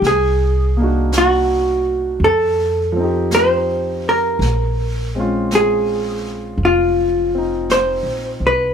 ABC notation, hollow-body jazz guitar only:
X:1
M:4/4
L:1/8
Q:"Swing" 1/4=55
K:Bbdor
V:1 name="Hollow-body jazz guitar"
A2 _G2 =A2 c B- | B z A2 F2 c _c |]